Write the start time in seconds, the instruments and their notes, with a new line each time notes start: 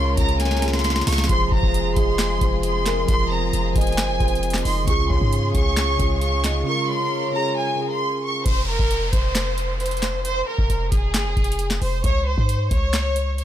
Already playing: 808-style bass C#2, synth keys C#3 C#4 F4 G#4 A#4, string section C#3 G#3 F4 A#4, soft synth lead C#5, violin section C6
0.15 808-style bass C#2, synth keys C#3 C#4 F4, violin section A#5, kick, closed hi-hat
0.20 synth keys G#4
0.29 closed hi-hat
0.40 violin section G#5, snare, closed hi-hat
0.45 snare
0.51 snare
0.57 synth keys C#3, snare
0.61 synth keys C#4 F4 G#4, snare, closed hi-hat
0.68 snare
0.73 violin section C6, snare
0.79 snare
0.84 snare, closed hi-hat
0.90 snare
0.96 snare
1.01 snare
1.07 808-style bass C#2, violin section C#6, snare, open hi-hat
1.13 snare
1.18 snare
1.24 synth keys F3, snare
1.29 808-style bass F1, string section C3 G#4, synth keys F4 G#4 C5, violin section C6, kick, closed hi-hat
1.52 808-style bass F1, soft synth lead G#4, violin section A#5, kick
1.63 808-style bass F1, kick
1.74 closed hi-hat
1.94 808-style bass F1, synth keys F3 F4 G#4, violin section C6, kick, closed hi-hat
2.00 synth keys D#5
2.19 snare, clap, closed hi-hat
2.38 808-style bass F1, synth keys F3 F4 G#4, kick, closed hi-hat
2.44 synth keys C5
2.63 violin section C6, closed hi-hat
2.86 soft synth lead A#4, snare, clap, closed hi-hat
3.06 808-style bass F1, synth keys F3 F4 G#4, violin section C6, kick, closed hi-hat
3.11 synth keys A#4
3.31 soft synth lead C5, violin section A#5
3.53 808-style bass F1, closed hi-hat
3.72 808-style bass F1, synth keys F3 F4 G#4, violin section G#5, kick, closed hi-hat
3.78 synth keys D#5, closed hi-hat
3.87 closed hi-hat
3.92 closed hi-hat
3.98 808-style bass G1, snare, clap, closed hi-hat
4.09 808-style bass F1
4.18 808-style bass F1, synth keys F3 F4 G#4, kick, closed hi-hat
4.23 synth keys C5
4.28 closed hi-hat
4.35 closed hi-hat
4.43 closed hi-hat
4.50 snare, closed hi-hat
4.54 clap, closed hi-hat
4.65 808-style bass F1, soft synth lead D#5, violin section C6, open hi-hat
4.84 808-style bass C#2, synth keys C#3 C#4 F4, string section C#3 G#3 F4 G#4, violin section C#6, kick, closed hi-hat
4.90 synth keys G#4
5.10 808-style bass C#2, soft synth lead C#5, violin section C6, kick
5.21 808-style bass G#2, kick
5.33 closed hi-hat
5.52 808-style bass C#2, synth keys C#3 C#4 F4, violin section C#6, kick, closed hi-hat
5.58 synth keys G#4
5.77 snare, clap, closed hi-hat
5.97 808-style bass C#2, synth keys C#3 C#4 F4, kick, closed hi-hat
6.02 synth keys G#4
6.21 violin section C#6, closed hi-hat
6.44 soft synth lead D#5, snare, clap, closed hi-hat
6.64 synth keys C#3 C#4 F4, string section A#4, violin section C#6
6.69 synth keys A#4
6.89 soft synth lead C#5, violin section C6
7.31 synth keys C#3 C#4 F4, violin section A#5
7.37 synth keys G#4
7.56 violin section G#5
7.75 synth keys C#3 C#4 F4
7.81 synth keys G#4
7.90 violin section C6
8.24 violin section C#6
8.46 808-style bass F1, violin section C5, kick, closed hi-hat, downlifter
8.68 violin section A#4
8.79 808-style bass F1, kick
8.91 closed hi-hat
9.13 808-style bass F1, violin section C5, kick, closed hi-hat
9.35 snare, clap, closed hi-hat
9.58 closed hi-hat
9.80 violin section C5, closed hi-hat
9.86 closed hi-hat
9.91 closed hi-hat
9.97 closed hi-hat
10.03 snare, clap, closed hi-hat
10.25 violin section C5, closed hi-hat
10.47 violin section A#4
10.58 808-style bass F1, kick
10.70 808-style bass F1, closed hi-hat
10.92 808-style bass F1, violin section G#4, kick, closed hi-hat
11.14 808-style bass G1, snare, clap, closed hi-hat
11.26 808-style bass F1
11.37 808-style bass F1, kick, closed hi-hat
11.44 closed hi-hat
11.52 closed hi-hat
11.59 closed hi-hat
11.70 snare, clap
11.81 808-style bass F1, violin section C5, open hi-hat
12.04 808-style bass C#2, violin section C#5, kick, closed hi-hat
12.26 violin section C5
12.38 808-style bass G#2, kick
12.49 closed hi-hat
12.71 808-style bass C#2, violin section C#5, kick, closed hi-hat
12.93 snare, clap, closed hi-hat
13.16 closed hi-hat
13.38 violin section C#5, closed hi-hat